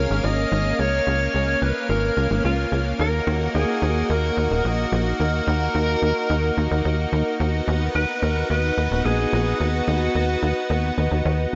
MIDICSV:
0, 0, Header, 1, 4, 480
1, 0, Start_track
1, 0, Tempo, 550459
1, 692, Time_signature, 4, 2, 24, 8
1, 10073, End_track
2, 0, Start_track
2, 0, Title_t, "Tenor saxophone"
2, 0, Program_c, 0, 66
2, 0, Note_on_c, 0, 70, 109
2, 213, Note_on_c, 0, 75, 117
2, 226, Note_off_c, 0, 70, 0
2, 694, Note_on_c, 0, 73, 118
2, 707, Note_off_c, 0, 75, 0
2, 1413, Note_on_c, 0, 71, 99
2, 1426, Note_off_c, 0, 73, 0
2, 1647, Note_off_c, 0, 71, 0
2, 1652, Note_on_c, 0, 70, 101
2, 2098, Note_off_c, 0, 70, 0
2, 2134, Note_on_c, 0, 65, 94
2, 2468, Note_off_c, 0, 65, 0
2, 2614, Note_on_c, 0, 70, 103
2, 3059, Note_off_c, 0, 70, 0
2, 3093, Note_on_c, 0, 68, 94
2, 3539, Note_off_c, 0, 68, 0
2, 3574, Note_on_c, 0, 70, 98
2, 4053, Note_on_c, 0, 75, 92
2, 4066, Note_off_c, 0, 70, 0
2, 4293, Note_off_c, 0, 75, 0
2, 4533, Note_on_c, 0, 70, 127
2, 6178, Note_off_c, 0, 70, 0
2, 6935, Note_on_c, 0, 71, 113
2, 7174, Note_on_c, 0, 70, 103
2, 7187, Note_off_c, 0, 71, 0
2, 7409, Note_off_c, 0, 70, 0
2, 7414, Note_on_c, 0, 71, 115
2, 7894, Note_on_c, 0, 68, 105
2, 7907, Note_off_c, 0, 71, 0
2, 8367, Note_off_c, 0, 68, 0
2, 8372, Note_on_c, 0, 66, 100
2, 9777, Note_off_c, 0, 66, 0
2, 10073, End_track
3, 0, Start_track
3, 0, Title_t, "Analog synth pad"
3, 0, Program_c, 1, 89
3, 0, Note_on_c, 1, 58, 84
3, 0, Note_on_c, 1, 61, 78
3, 0, Note_on_c, 1, 77, 88
3, 2577, Note_off_c, 1, 61, 0
3, 2578, Note_off_c, 1, 77, 0
3, 2611, Note_on_c, 1, 66, 93
3, 2612, Note_on_c, 1, 63, 74
3, 6417, Note_off_c, 1, 58, 0
3, 6417, Note_off_c, 1, 66, 0
3, 6453, Note_on_c, 1, 59, 82
3, 6453, Note_on_c, 1, 66, 89
3, 10073, Note_off_c, 1, 59, 0
3, 10073, Note_off_c, 1, 63, 0
3, 10073, Note_off_c, 1, 66, 0
3, 10073, End_track
4, 0, Start_track
4, 0, Title_t, "Analog synth bass"
4, 0, Program_c, 2, 38
4, 92, Note_on_c, 2, 32, 96
4, 186, Note_off_c, 2, 32, 0
4, 211, Note_on_c, 2, 32, 102
4, 400, Note_off_c, 2, 32, 0
4, 452, Note_on_c, 2, 32, 101
4, 640, Note_off_c, 2, 32, 0
4, 692, Note_on_c, 2, 37, 91
4, 880, Note_off_c, 2, 37, 0
4, 933, Note_on_c, 2, 37, 103
4, 1121, Note_off_c, 2, 37, 0
4, 1173, Note_on_c, 2, 37, 88
4, 1361, Note_off_c, 2, 37, 0
4, 1412, Note_on_c, 2, 37, 88
4, 1506, Note_off_c, 2, 37, 0
4, 1652, Note_on_c, 2, 32, 104
4, 1840, Note_off_c, 2, 32, 0
4, 1892, Note_on_c, 2, 37, 95
4, 1987, Note_off_c, 2, 37, 0
4, 2012, Note_on_c, 2, 32, 87
4, 2106, Note_off_c, 2, 32, 0
4, 2132, Note_on_c, 2, 37, 91
4, 2320, Note_off_c, 2, 37, 0
4, 2372, Note_on_c, 2, 37, 85
4, 2560, Note_off_c, 2, 37, 0
4, 2611, Note_on_c, 2, 39, 100
4, 2800, Note_off_c, 2, 39, 0
4, 2852, Note_on_c, 2, 39, 104
4, 3041, Note_off_c, 2, 39, 0
4, 3093, Note_on_c, 2, 39, 98
4, 3187, Note_off_c, 2, 39, 0
4, 3332, Note_on_c, 2, 39, 96
4, 3521, Note_off_c, 2, 39, 0
4, 3574, Note_on_c, 2, 39, 100
4, 3761, Note_off_c, 2, 39, 0
4, 3814, Note_on_c, 2, 39, 87
4, 3907, Note_off_c, 2, 39, 0
4, 3933, Note_on_c, 2, 27, 94
4, 4027, Note_off_c, 2, 27, 0
4, 4053, Note_on_c, 2, 34, 97
4, 4241, Note_off_c, 2, 34, 0
4, 4293, Note_on_c, 2, 34, 109
4, 4481, Note_off_c, 2, 34, 0
4, 4534, Note_on_c, 2, 39, 86
4, 4721, Note_off_c, 2, 39, 0
4, 4773, Note_on_c, 2, 39, 103
4, 4961, Note_off_c, 2, 39, 0
4, 5013, Note_on_c, 2, 39, 93
4, 5201, Note_off_c, 2, 39, 0
4, 5252, Note_on_c, 2, 39, 86
4, 5346, Note_off_c, 2, 39, 0
4, 5493, Note_on_c, 2, 39, 99
4, 5681, Note_off_c, 2, 39, 0
4, 5733, Note_on_c, 2, 39, 91
4, 5827, Note_off_c, 2, 39, 0
4, 5854, Note_on_c, 2, 39, 92
4, 5947, Note_off_c, 2, 39, 0
4, 5974, Note_on_c, 2, 39, 100
4, 6162, Note_off_c, 2, 39, 0
4, 6213, Note_on_c, 2, 39, 98
4, 6307, Note_off_c, 2, 39, 0
4, 6453, Note_on_c, 2, 39, 99
4, 6641, Note_off_c, 2, 39, 0
4, 6694, Note_on_c, 2, 39, 102
4, 6881, Note_off_c, 2, 39, 0
4, 6933, Note_on_c, 2, 39, 96
4, 7027, Note_off_c, 2, 39, 0
4, 7172, Note_on_c, 2, 39, 98
4, 7361, Note_off_c, 2, 39, 0
4, 7412, Note_on_c, 2, 39, 97
4, 7601, Note_off_c, 2, 39, 0
4, 7652, Note_on_c, 2, 39, 80
4, 7746, Note_off_c, 2, 39, 0
4, 7773, Note_on_c, 2, 27, 96
4, 7867, Note_off_c, 2, 27, 0
4, 7893, Note_on_c, 2, 34, 99
4, 8081, Note_off_c, 2, 34, 0
4, 8135, Note_on_c, 2, 34, 105
4, 8322, Note_off_c, 2, 34, 0
4, 8374, Note_on_c, 2, 39, 89
4, 8562, Note_off_c, 2, 39, 0
4, 8613, Note_on_c, 2, 39, 96
4, 8801, Note_off_c, 2, 39, 0
4, 8853, Note_on_c, 2, 39, 89
4, 9041, Note_off_c, 2, 39, 0
4, 9091, Note_on_c, 2, 39, 89
4, 9186, Note_off_c, 2, 39, 0
4, 9331, Note_on_c, 2, 39, 97
4, 9520, Note_off_c, 2, 39, 0
4, 9572, Note_on_c, 2, 39, 87
4, 9666, Note_off_c, 2, 39, 0
4, 9692, Note_on_c, 2, 39, 95
4, 9786, Note_off_c, 2, 39, 0
4, 9813, Note_on_c, 2, 39, 105
4, 10001, Note_off_c, 2, 39, 0
4, 10073, End_track
0, 0, End_of_file